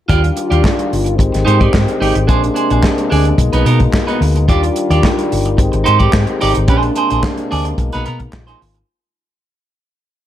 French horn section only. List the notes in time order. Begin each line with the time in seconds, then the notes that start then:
0.09 D#3 G3 D4 F4
1.17 G#3 C4 G4
2.27 C3 A#3 D4
3.37 B2 A#3 D#4
4.48 D#3 G3 D4 F4
5.58 G#3 C4 G4
6.70 C3 G#3 A#3 D4
7.79 B2 D#4
8.32 D#3 F4